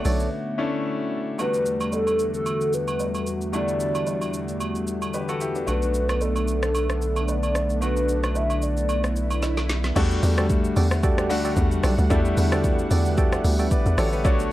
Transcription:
Already playing: analog synth pad D3 A3 B3 F#4, grand piano A3 C#4 D4 F#4 C#5
0.05 log drum bass B1, synth stab A4 C#5 D5, open hi-hat, shaker
0.20 shaker
0.58 grand piano A3 C#4 D4 E4
1.38 grand piano E2 G3 A3 D4 F#4, analog synth pad E2 D3 G3 A3 F#4, soft synth lead B4, high agogo, shaker
1.54 shaker
1.66 shaker
1.81 high agogo, shaker
1.92 soft synth lead A4, low woodblock, shaker
2.07 high agogo, shaker
2.19 shaker
2.34 soft synth lead A4, shaker
2.46 high agogo, shaker
2.61 shaker
2.73 soft synth lead B4, shaker
2.88 high agogo, shaker
3.00 low woodblock, shaker
3.15 high agogo, shaker
3.27 shaker
3.41 shaker
3.52 grand piano E2 G3 A3 D4 E4, soft synth lead D5, high agogo, shaker
3.68 shaker
3.80 shaker
3.95 high agogo, shaker
4.07 low woodblock, shaker
4.21 high agogo, shaker
4.34 shaker
4.48 shaker
4.60 high agogo, shaker
4.75 shaker
4.87 shaker
5.02 high agogo, shaker
5.14 grand piano G4 B4, low woodblock, shaker
5.29 grand piano F#4 A4, high agogo, shaker
5.41 grand piano E4 G4, shaker
5.55 grand piano B3 D4, shaker
5.67 analog synth bass B1, analog synth pad D3 B3 D4, grand piano A3 B3 D4 F#4, soft synth lead B4, high agogo, shaker
5.82 shaker
5.94 shaker
6.09 cross-stick, high agogo, shaker
6.21 soft synth lead A4, low woodblock, shaker
6.36 high agogo, shaker
6.48 shaker
6.63 soft synth lead A4, cross-stick, shaker
6.75 high agogo, shaker
6.90 cross-stick, shaker
7.02 shaker
7.16 high agogo, shaker
7.28 soft synth lead D5, low woodblock, shaker
7.43 high agogo, shaker
7.55 cross-stick, shaker
7.70 shaker
7.81 grand piano A3 B3 D4 F#4, soft synth lead B4, swell, high agogo, shaker
7.97 shaker
8.09 shaker
8.24 cross-stick, high agogo, shaker
8.35 soft synth lead E5, low woodblock, shaker
8.50 high agogo, shaker
8.62 soft synth lead D5, shaker
8.77 shaker
8.89 high agogo, shaker
9.04 cross-stick, shaker
9.16 shaker
9.30 high agogo, shaker
9.42 snare, low woodblock, shaker
9.57 snare, high agogo, shaker
9.69 snare, shaker
9.84 snare, shaker
9.96 log drum bass E2, analog synth pad D3 G3 A3 F#5, grand piano G3 A3 D4 F#4, synth stab F#4 G4 A4 D5, kick, crash, shaker
10.11 shaker
10.23 log drum bass E2, open hi-hat, shaker
10.37 synth stab F#4 G4 A4 D5, cross-stick, shaker
10.50 kick, shaker
10.64 shaker
10.76 log drum bass E2, synth stab F#4 G4 A4 D5, open hi-hat, shaker
10.91 cross-stick, shaker
11.03 synth stab F#4 G4 A4 D5, kick, shaker
11.18 cross-stick, shaker
11.29 log drum bass D2, grand piano G3 A3 D4 F#4, open hi-hat, shaker
11.45 synth stab F#4 G4 A4 D5, shaker
11.57 log drum bass E2, kick, shaker
11.72 shaker
11.83 log drum bass B1, synth stab F#4 G4 A4 D5, cross-stick, open hi-hat, shaker
11.98 log drum bass D2, shaker
12.10 log drum bass E2, grand piano G3 A3 D4 E4, analog synth pad B3, synth stab F#4 G4 A4 D5, kick, shaker
12.25 shaker
12.37 log drum bass E2, open hi-hat, shaker
12.52 synth stab F#4 G4 A4 D5, cross-stick, shaker
12.64 kick, shaker
12.79 shaker
12.91 log drum bass E2, synth stab F#4 G4 A4 D5, open hi-hat, shaker
13.06 shaker
13.17 synth stab F#4 G4 A4 D5, kick, shaker
13.32 cross-stick, shaker
13.44 log drum bass D2, open hi-hat, shaker
13.59 synth stab F#4 G4 A4 D5, shaker
13.71 grand piano B4 D5, kick, shaker
13.86 log drum bass E2, shaker
13.98 log drum bass A1, synth stab F#4 G4 A4 D5, grand piano A4 C#5, cross-stick, open hi-hat, shaker
14.13 grand piano G4 B4, shaker
14.24 log drum bass B1, analog synth pad D3 A3 F#4, grand piano A3 D4 F#4 C#5, synth stab A4 C#5 D5, kick, shaker
14.39 shaker

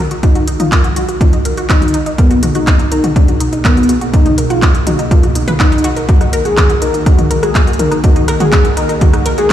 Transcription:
Already playing: analog synth pad D#3 A#3 F#4
0.11 synth arpeggio sound F#4, closed hi-hat
0.23 analog synth pad G#3, analog synth lead D#4, synth arpeggio sound F#4, kick, closed hi-hat
0.35 synth arpeggio sound F#4, closed hi-hat
0.48 synth arpeggio sound D#4, closed hi-hat
0.60 synth arpeggio sound D#4, analog synth lead F4, closed hi-hat, mid tom
0.72 synth arpeggio sound A#4, kick, clap, closed hi-hat
0.84 synth arpeggio sound F#4, closed hi-hat
0.96 analog synth lead F#4, synth arpeggio sound F#4, closed hi-hat
1.09 synth arpeggio sound F#4, closed hi-hat
1.21 synth arpeggio sound D#4, analog synth lead F4, kick, closed hi-hat, mid tom
1.33 synth arpeggio sound D#4, closed hi-hat
1.45 synth arpeggio sound A#4, closed hi-hat
1.57 synth arpeggio sound F#4, closed hi-hat
1.70 analog synth lead D#4, synth arpeggio sound F#4, kick, clap, closed hi-hat
1.82 synth arpeggio sound F#4, closed hi-hat, mid tom
1.88 closed hi-hat
1.94 synth arpeggio sound D#4, closed hi-hat
2.06 synth arpeggio sound D#4, closed hi-hat
2.18 analog synth pad B2 A#3 G#4, analog synth lead B3, synth arpeggio sound A#4, kick, closed hi-hat
2.31 synth arpeggio sound F#4, closed hi-hat
2.43 synth arpeggio sound F#4, closed hi-hat, mid tom
2.55 analog synth lead D#4, synth arpeggio sound F#4, closed hi-hat
2.67 synth arpeggio sound D#4, kick, clap, closed hi-hat
2.79 synth arpeggio sound D#4, closed hi-hat
2.92 analog synth lead D#4, synth arpeggio sound A#4, closed hi-hat
3.04 synth arpeggio sound F#4, closed hi-hat, mid tom
3.16 analog synth lead D4, synth arpeggio sound F#4, kick, closed hi-hat
3.28 synth arpeggio sound F#4, closed hi-hat
3.40 synth arpeggio sound D#4, closed hi-hat
3.53 synth arpeggio sound D#4, closed hi-hat
3.65 analog synth lead B3, synth arpeggio sound A#4, kick, clap, closed hi-hat, mid tom
3.77 synth arpeggio sound F#4, closed hi-hat
3.83 closed hi-hat
3.89 synth arpeggio sound F#4, closed hi-hat
4.01 synth arpeggio sound F#4, closed hi-hat
4.14 synth arpeggio sound D#4, analog synth lead D#4, kick, closed hi-hat
4.26 synth arpeggio sound D#4, closed hi-hat, mid tom
4.38 synth arpeggio sound A#4, closed hi-hat
4.50 analog synth lead F4, synth arpeggio sound F#4, closed hi-hat
4.62 synth arpeggio sound F#4, kick, clap, closed hi-hat
4.74 synth arpeggio sound F#4, closed hi-hat
4.87 synth arpeggio sound D#4, analog synth lead F#4, closed hi-hat, mid tom
4.99 synth arpeggio sound D#4, closed hi-hat
5.11 analog synth lead F4, synth arpeggio sound A#4, kick, closed hi-hat
5.23 synth arpeggio sound F#4, closed hi-hat
5.35 synth arpeggio sound D#4, closed hi-hat
5.48 synth arpeggio sound B4, closed hi-hat, mid tom
5.60 analog synth lead D#4, synth arpeggio sound F#5, kick, clap, closed hi-hat
5.72 synth arpeggio sound D#4, closed hi-hat
5.78 closed hi-hat
5.84 synth arpeggio sound F#4, closed hi-hat
5.96 synth arpeggio sound A#4, closed hi-hat
6.09 analog synth pad D#3 A#3 F#4, synth arpeggio sound D#4, analog synth lead F#4, kick, closed hi-hat
6.21 synth arpeggio sound D#4, cross-stick, closed hi-hat
6.33 synth arpeggio sound A#4, closed hi-hat
6.45 synth arpeggio sound F#4, analog synth lead G#4, closed hi-hat
6.57 synth arpeggio sound F#4, kick, cross-stick, clap, closed hi-hat, mid tom
6.70 synth arpeggio sound F#4, closed hi-hat
6.82 synth arpeggio sound D#4, analog synth lead A#4, closed hi-hat
6.94 synth arpeggio sound D#4, closed hi-hat
7.06 synth arpeggio sound D#4, analog synth lead F#4, kick, cross-stick, closed hi-hat
7.18 synth arpeggio sound D#4, closed hi-hat, mid tom
7.31 synth arpeggio sound A#4, closed hi-hat
7.43 synth arpeggio sound F#4, analog synth lead G#4, cross-stick, closed hi-hat
7.55 synth arpeggio sound F#4, kick, clap, closed hi-hat
7.67 synth arpeggio sound F#4, closed hi-hat
7.73 closed hi-hat
7.79 synth arpeggio sound D#4, analog synth lead A#4, closed hi-hat, mid tom
7.91 synth arpeggio sound D#4, cross-stick, closed hi-hat
8.04 synth arpeggio sound D#4, analog synth lead F#4, kick, closed hi-hat
8.16 synth arpeggio sound D#4, closed hi-hat
8.28 synth arpeggio sound A#4, cross-stick, closed hi-hat
8.40 synth arpeggio sound F#4, analog synth lead G#4, closed hi-hat, mid tom
8.52 synth arpeggio sound F#4, kick, clap, closed hi-hat
8.65 synth arpeggio sound F#4, closed hi-hat
8.77 synth arpeggio sound D#4, analog synth lead A#4, cross-stick, closed hi-hat
8.89 synth arpeggio sound D#4, closed hi-hat
9.01 synth arpeggio sound D#4, analog synth lead F#4, kick, closed hi-hat, mid tom
9.13 synth arpeggio sound D#4, cross-stick, closed hi-hat
9.26 synth arpeggio sound A#4, closed hi-hat
9.38 synth arpeggio sound F#4, analog synth lead G#4, closed hi-hat

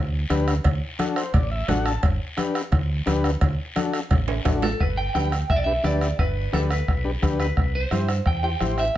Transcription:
Already playing: fingered electric bass D2
0.30 fingered electric bass D2, transistor combo organ D4 G4 B4, bombo rim, cowbell, high conga, short guiro
0.48 bombo rim, short guiro
0.64 fingered electric bass D2, bombo low, bombo rim, cowbell, high conga, low conga, long guiro
0.99 transistor combo organ D4 F#4 A4, bombo rim, cowbell, high conga, short guiro
1.16 transistor combo organ C5, bombo rim, short guiro
1.34 fingered electric bass A1, transistor combo organ D5, bombo low, bombo rim, cowbell, high conga, low conga, long guiro
1.51 transistor combo organ E5
1.68 fingered electric bass A1, transistor combo organ D4 F#4 A4 F#5, bombo rim, cowbell, high conga, low conga, low timbale, short guiro
1.86 transistor combo organ A5, bombo rim, short guiro
2.03 fingered electric bass G1, bombo low, bombo rim, cowbell, high conga, long guiro
2.37 transistor combo organ D4 G4 B4, bombo rim, cowbell, high conga, short guiro
2.55 bombo rim, short guiro
2.72 fingered electric bass D2, bombo low, bombo rim, cowbell, high conga, low conga, long guiro
3.06 fingered electric bass D2, transistor combo organ D4 G4 B4, bombo rim, cowbell, high conga, short guiro
3.24 bombo rim, short guiro
3.41 fingered electric bass D2, bombo low, bombo rim, cowbell, high conga, low conga, long guiro
3.76 transistor combo organ D4 F#4 A4, bombo rim, cowbell, high conga, short guiro
3.93 bombo rim, short guiro
4.11 fingered electric bass A1, bombo low, bombo rim, cowbell, high conga, low conga, long guiro
4.28 high timbale
4.45 fingered electric bass A1, transistor combo organ D4 F#4 A4, bombo low, bombo rim, cowbell, high conga, low conga, high timbale, short guiro
4.62 clean electric guitar A4, bombo rim, low timbale, short guiro
4.80 fingered electric bass G1, clean electric guitar B4, bombo low, bombo rim, high conga, long guiro
4.97 clean electric guitar G5
5.14 fingered electric bass D2, transistor combo organ D4 G4 B4, clean electric guitar G5, bombo rim, high conga, short guiro
5.32 bombo rim, short guiro
5.49 fingered electric bass B1, clean electric guitar E5, bombo low, bombo rim, high conga, long guiro
5.56 clean electric guitar D5
5.64 transistor combo organ D4 G4 B4, clean electric guitar E5
5.83 fingered electric bass D2, transistor combo organ D4 G4 B4, clean electric guitar D5, bombo rim, high conga, short guiro
6.01 bombo rim, short guiro
6.19 fingered electric bass G1, clean electric guitar B4, bombo low, bombo rim, high conga, long guiro
6.52 fingered electric bass D2, transistor combo organ D4 G4 B4, clean electric guitar A4, bombo rim, high conga, short guiro
6.71 clean electric guitar B4, bombo rim, short guiro
6.88 fingered electric bass B1, bombo low, bombo rim, high conga, long guiro
7.04 transistor combo organ D4 G4 B4
7.22 fingered electric bass D2, transistor combo organ D4 G4 B4, bombo low, bombo rim, high conga, short guiro
7.40 clean electric guitar B4, bombo rim, short guiro
7.57 fingered electric bass C2, bombo low, bombo rim, high conga, long guiro
7.75 clean electric guitar C5
7.91 fingered electric bass G2, transistor combo organ E4 G4 C5, bombo rim, high conga, short guiro
8.09 bombo rim, short guiro
8.26 fingered electric bass E2, clean electric guitar G5, bombo low, bombo rim, high conga, long guiro
8.43 transistor combo organ E4 G4 C5, clean electric guitar G5
8.60 fingered electric bass A1, transistor combo organ E4 G4 C5, bombo rim, high conga, short guiro
8.78 clean electric guitar E5, bombo rim, short guiro

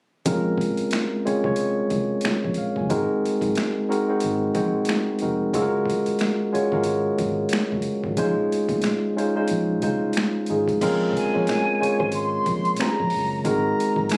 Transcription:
0.26 fingered electric bass A#1, tine electric piano G#3 C4 C#4 F4 A#4, kick, closed hi-hat
0.58 kick, closed hi-hat
0.77 muted fingered electric bass stroke, closed hi-hat
0.91 finger snap, snare, closed hi-hat
1.25 tine electric piano G#3 C4 C#4 F4 C#5, muted fingered electric bass stroke, closed hi-hat
1.44 fingered electric bass C2, tine electric piano G#3 C#4 F4 C5 C#5, kick
1.56 closed hi-hat
1.90 fingered electric bass C2, kick, closed hi-hat
2.21 finger snap, closed hi-hat
2.25 muted fingered electric bass stroke, snare
2.44 fingered electric bass A#1, tine electric piano C#5, kick
2.54 tine electric piano F5, closed hi-hat
2.76 fingered electric bass F#1, tine electric piano G#5, kick
2.89 fingered electric bass G#1, tine electric piano G#3 C4 D#4 F#4 A#4, kick, closed hi-hat
3.25 muted fingered electric bass stroke, closed hi-hat
3.41 fingered electric bass G#2, kick, closed hi-hat
3.55 finger snap, snare, closed hi-hat
3.89 tine electric piano G#3 C4 D#4 F#4 A#4, closed hi-hat
4.09 tine electric piano G#3 C4 D#4 F#4 C5
4.20 fingered electric bass G#1, closed hi-hat
4.54 fingered electric bass A#1, tine electric piano G#3 C4 D#4 F#4 C5, kick, closed hi-hat
4.85 finger snap, closed hi-hat
4.89 snare
5.19 fingered electric bass F1, tine electric piano G#3 C4 D#4 F#4 A#4, closed hi-hat
5.54 fingered electric bass F#1, tine electric piano G#3 C#4 F4 F#4 A4, kick, closed hi-hat
5.62 tine electric piano A#4
5.86 kick
5.90 closed hi-hat
6.06 muted fingered electric bass stroke, closed hi-hat
6.19 finger snap, snare, closed hi-hat
6.52 tine electric piano G#3 C#4 F4 F#4 C#5, muted fingered electric bass stroke, closed hi-hat
6.72 fingered electric bass G#1, tine electric piano G#3 C#4 F4 F#4 A#4, kick
6.84 closed hi-hat
7.18 fingered electric bass G#1, kick, closed hi-hat
7.49 finger snap, closed hi-hat
7.53 muted fingered electric bass stroke, snare
7.72 fingered electric bass F#1, kick
7.82 closed hi-hat
8.04 fingered electric bass G#1, kick
8.17 fingered electric bass A#1, tine electric piano G#3 C#4 D#4 F4 C5, kick, closed hi-hat
8.52 muted fingered electric bass stroke, closed hi-hat
8.69 fingered electric bass A#2, kick, closed hi-hat
8.82 finger snap, snare, closed hi-hat
9.16 tine electric piano G#3 C#4 D#4 F4 C5, closed hi-hat
9.35 tine electric piano G#3 C#4 D#4 F4 C5
9.48 fingered electric bass A#1, closed hi-hat
9.82 fingered electric bass C2, tine electric piano G#3 C#4 D#4 F4 C5, kick, closed hi-hat
10.13 finger snap, closed hi-hat
10.17 snare
10.46 fingered electric bass G#1, tine electric piano G#3 C#4 D#4 F4, closed hi-hat
10.51 tine electric piano G#4
10.68 kick, closed hi-hat
10.81 fingered electric bass A#1, tine electric piano G#3 C4 C#4 F4 A#4, kick, closed hi-hat, crash
11.13 flute G#5, kick, closed hi-hat
11.34 fingered electric bass A#1, tine electric piano G#3 C#4 F4 C5 C#5
11.47 finger snap, snare, closed hi-hat
11.80 tine electric piano G#3 C#4 F4 C5 C#5, muted fingered electric bass stroke, closed hi-hat
12.00 fingered electric bass G#1, hollow-body jazz guitar C#4 G#4 C5, kick
12.12 flute C6, closed hi-hat
12.46 fingered electric bass A#1, kick, closed hi-hat
12.65 closed hi-hat
12.76 hollow-body jazz guitar C#4, flute A#5, finger snap, closed hi-hat
12.81 hollow-body jazz guitar G#4 C5, snare
13.00 fingered electric bass A#1, kick
13.10 open hi-hat
13.15 fingered electric bass F#1
13.44 fingered electric bass G#1, tine electric piano G#3 C4 D#4 F#4 A#4, flute A#5, kick, closed hi-hat
13.80 closed hi-hat
13.96 fingered electric bass G#1, kick
14.09 flute G#5, finger snap, snare, closed hi-hat

